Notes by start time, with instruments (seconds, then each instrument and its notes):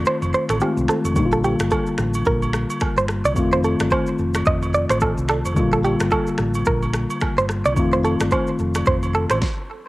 Already playing: tine electric piano D#3 A3 C4 F4
0.05 clean electric guitar C5, shaker
0.22 fingered electric bass F1, high agogo, shaker
0.34 clean electric guitar C5, shaker
0.49 fingered electric bass A1, clean electric guitar A4, finger snap, cross-stick, high agogo, shaker
0.60 tine electric piano D#3 G#3 C4 F4, clean electric guitar G4, low woodblock, shaker
0.67 tine electric piano A3
0.77 fingered electric bass C2, shaker
0.88 clean electric guitar A4, finger snap, cross-stick, shaker
1.05 fingered electric bass F1, high agogo, shaker
1.14 fingered electric bass A#1, tine electric piano D3 G3 A#3, kick, high agogo, shaker
1.19 tine electric piano D#4
1.25 tine electric piano F4
1.32 clean electric guitar A4, shaker
1.44 clean electric guitar G4, high agogo, shaker
1.59 fingered electric bass G1, finger snap, cross-stick, shaker
1.71 clean electric guitar A4, kick, high agogo, low woodblock, shaker
1.86 shaker
1.98 fingered electric bass A1, finger snap, cross-stick, shaker
2.14 high agogo, shaker
2.25 fingered electric bass A#1, clean electric guitar A#4, kick, shaker
2.42 high agogo, shaker
2.53 finger snap, cross-stick, shaker
2.70 high agogo, shaker
2.80 finger snap, kick, cross-stick, low woodblock, shaker
2.97 fingered electric bass G1, clean electric guitar C5, shaker
3.08 finger snap, cross-stick, shaker
3.25 fingered electric bass C2, clean electric guitar D5, high agogo, shaker
3.34 fingered electric bass F1, tine electric piano D#3 A3 C4, kick, high agogo, shaker
3.39 tine electric piano F4
3.52 clean electric guitar C5, shaker
3.64 clean electric guitar A4, high agogo, shaker
3.80 fingered electric bass G1, finger snap, cross-stick, shaker
3.91 clean electric guitar C5, kick, high agogo, low woodblock, shaker
4.06 shaker
4.18 fingered electric bass F1, shaker
4.34 finger snap, cross-stick, high agogo, shaker
4.45 fingered electric bass F1, clean electric guitar D#5, kick, shaker
4.62 high agogo, shaker
4.74 clean electric guitar D5, shaker
4.89 fingered electric bass A1, clean electric guitar C5, finger snap, cross-stick, high agogo, shaker
5.00 clean electric guitar A4, kick, low woodblock, shaker
5.17 fingered electric bass C2, shaker
5.29 clean electric guitar A4, finger snap, cross-stick, shaker
5.45 fingered electric bass F1, high agogo, shaker
5.54 fingered electric bass A#1, tine electric piano D3 G3 A#3, kick, high agogo, shaker
5.59 tine electric piano F4
5.72 clean electric guitar A4, shaker
5.84 clean electric guitar G4, high agogo, shaker
6.00 fingered electric bass G1, finger snap, cross-stick, shaker
6.11 clean electric guitar A4, kick, high agogo, low woodblock, shaker
6.27 shaker
6.38 fingered electric bass A1, finger snap, cross-stick, shaker
6.54 high agogo, shaker
6.65 fingered electric bass A#1, clean electric guitar A#4, kick, shaker
6.82 high agogo, shaker
6.94 finger snap, cross-stick, shaker
7.10 high agogo, shaker
7.21 finger snap, kick, cross-stick, low woodblock, shaker
7.38 fingered electric bass G1, clean electric guitar C5, shaker
7.49 finger snap, cross-stick, shaker
7.65 fingered electric bass C2, clean electric guitar D5, high agogo, shaker
7.74 fingered electric bass F1, tine electric piano D#3 A3 C4, kick, high agogo, shaker
7.79 tine electric piano F4
7.92 clean electric guitar C5, shaker
8.05 clean electric guitar A4, high agogo, shaker
8.20 fingered electric bass G1, finger snap, cross-stick, shaker
8.31 clean electric guitar C5, kick, high agogo, low woodblock, shaker
8.47 shaker
8.59 fingered electric bass F1, shaker
8.74 finger snap, cross-stick, high agogo, shaker
8.86 fingered electric bass F1, clean electric guitar C5, kick, shaker
9.03 high agogo, shaker
9.14 clean electric guitar A4, shaker
9.30 fingered electric bass A1, clean electric guitar C5, finger snap, cross-stick, high agogo, shaker
9.42 kick, snare